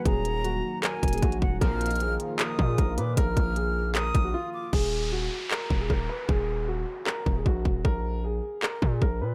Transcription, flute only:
\new Staff \with { instrumentName = "Flute" } { \time 4/4 \key ees \minor \tempo 4 = 154 bes''2 aes''4. ges''8 | f'''2 ees'''4. d'''8 | f'''2 ees'''4. d'''8 | r1 |
r1 | r1 | }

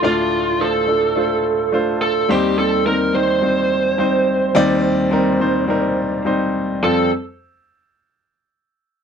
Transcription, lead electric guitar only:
\new Staff \with { instrumentName = "Lead electric guitar" } { \time 4/4 \key f \mixolydian \tempo 4 = 106 f'4 a'2~ a'8 a'8 | g'8 a'8 bes'8 c''2~ c''8~ | c''2. r4 | a'8 r2. r8 | }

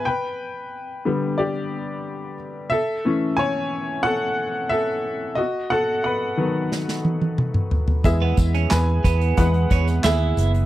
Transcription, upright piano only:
<<
  \new Staff \with { instrumentName = "Upright piano" } { \time 4/4 \key e \major \tempo 4 = 90 <b' g''>2 <g' d''>4. r8 | <a' e''>4 <cis'' gis''>4 <a' fis''>4 <a' e''>4 | <fis' dis''>8 <a' fis''>8 <b' fis''>2~ <b' fis''>8 r8 | <gis' e''>4 <b' gis''>4 <b' fis''>4 <gis' e''>4 | }
  \new Staff \with { instrumentName = "Upright piano" } { \clef bass \time 4/4 \key e \major r4. <d g b>8 r2 | r8 <e a cis'>8 r2. | r4. <dis fis b>2~ <dis fis b>8 | <gis b e'>2 <e gis b>8 r4. | }
>>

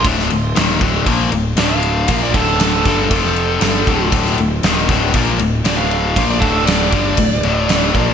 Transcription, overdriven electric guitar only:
\new Staff \with { instrumentName = "Overdriven electric guitar" } { \clef bass \time 4/4 \key d \minor \tempo 4 = 118 <d, a, d>8 <d, a,>8 <ees, bes, ees>8 <d, a, d>8 <bes, f bes>8 <d, a,>8 <d, a, d>4 | <bes, f bes>8 <d, a, d>4 <g, d g>8 <f, c f>4 <g, d g>8 <d, a, d>8 | <d, a, d>8 <d, a,>8 <ees, bes, ees>8 <d, a, d>8 <bes, f bes>8 <d, a,>8 <d, a, d>4 | <bes, f bes>8 <d, a, d>4 <g, d g>8 <d, a,>8 <d, a, d>4 <bes, f bes>8 | }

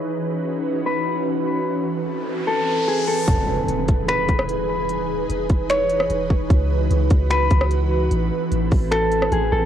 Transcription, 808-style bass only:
\new Staff \with { instrumentName = "808-style bass" } { \clef bass \time 4/4 \key e \major \tempo 4 = 149 r1 | r1 | e,,4 e,,8 e,,4 e,,4.~ | e,,4 e,,8 e,,4. e,,8 e,,8 |
cis,4 cis,8 cis,4 cis,4. | a,,8 r8 a,,8 a,,4. a,,8 a,,8 | }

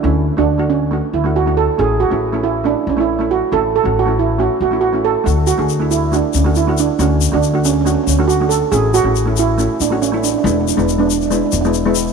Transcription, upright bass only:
\new Staff \with { instrumentName = "Upright bass" } { \clef bass \time 4/4 \key a \major \tempo 4 = 138 d,8. d,4.~ d,16 d,4. | a,,8. a,,4.~ a,,16 a,,4. | a,,8. a,,4.~ a,,16 a,,4. | d,8. d,4.~ d,16 d,4. |
d,8. d,4.~ d,16 d,4. | a,,8. a,,4.~ a,,16 a,,4. | e,,8. e,,4.~ e,,16 e,,4. | }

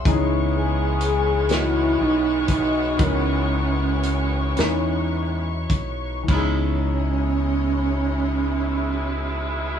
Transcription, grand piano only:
\new Staff \with { instrumentName = "Grand piano" } { \time 6/8 \key cis \minor \tempo 4. = 37 <e b cis' dis' gis'>4. <e b cis' fis' dis''>4. | <e b cis' dis' ais' b'>4. <e b cis' dis' b'>4. | <e b cis' dis' gis'>2. | }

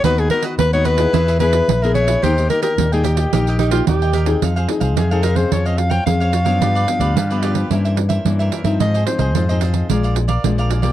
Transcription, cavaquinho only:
\new Staff \with { instrumentName = "Cavaquinho" } { \time 4/4 \key ees \mixolydian \tempo 4 = 110 <fis' b' dis'' fis''>8 <fis' b' dis'' fis''>16 <fis' b' dis'' fis''>16 r16 <b' dis'' fis''>16 <fis' b' dis'' fis''>16 <b' dis'' fis''>16 <e' gis' b' e''>16 <e' gis' b' e''>16 <e' gis' b' e''>8. <gis' b' e''>16 <e' gis' b' e''>16 <gis' b' e''>16 | <g' bes' ees'' g''>8 <g' bes' ees'' g''>16 <g' bes' ees'' g''>16 r16 <bes' ees'' g''>16 <g' bes' ees'' g''>16 <bes' ees'' g''>16 <g' bes' ees'' g''>16 <g' bes' ees'' g''>16 <g' bes' ees'' g''>8. <bes' ees'' g''>16 <g' bes' ees'' g''>16 <bes' ees'' g''>16 | \key f \minor <ees' aes' c'' f''>16 <aes' c'' f''>16 r16 <aes' c'' f''>16 <ees' aes' c'' f''>16 <aes' c'' f''>16 <ees' aes' c'' f''>8 <f' c'' des'' f''>16 <c'' des'' f''>16 r16 <c'' des'' f''>8 <c'' des'' f''>16 <f' c'' des'' f''>16 <c'' des'' f''>16 | <f' g' b' d''>16 <g' b' d''>16 r16 <g' b' d''>16 <f' g' b' d''>16 <g' b' d''>16 <f' g' b' d''>8 <e' bes' c'' e''>16 <bes' c'' e''>16 r16 <bes' c'' e''>8 <bes' c'' e''>16 <e' bes' c'' e''>16 <bes' c'' e''>16 |
<f' aes' c'' ees''>16 <aes' c'' ees''>16 r16 <aes' c'' ees''>16 <f' aes' c'' ees''>16 <aes' c'' ees''>16 <f' aes' c'' ees''>8 <aes' bes' d'' f''>16 <bes' d'' f''>16 r16 <bes' d'' f''>8 <bes' d'' f''>16 <aes' bes' d'' f''>16 <bes' d'' f''>16 | }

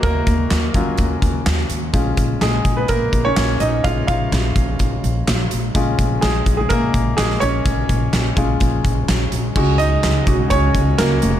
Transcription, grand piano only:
\new Staff \with { instrumentName = "Grand piano" } { \time 4/4 \key bes \phrygian \tempo 4 = 126 << { <bes bes'>2.~ <bes bes'>8 r8 | r4 <aes aes'>8. <ces' ces''>16 <bes bes'>8. <des' des''>8. <ees' ees''>8 | f''8 <f' f''>2 r4. | r4 <aes aes'>8. <aes aes'>16 <bes bes'>4 <aes aes'>8 <des' des''>8~ |
<des' des''>2. r4 | r8 <ees' ees''>4. <des' des''>4 <bes bes'>4 | } \\ { r4. <ges des' f'>4. r4 | <aes des' f'>8 r2. r8 | <aes des' f'>4. r2 r8 | <aes des' f'>1 |
r4. <aes des' f'>2~ <aes des' f'>8 | <aes des' ges'>8 r4 <aes des' ges'>8 r2 | } >> }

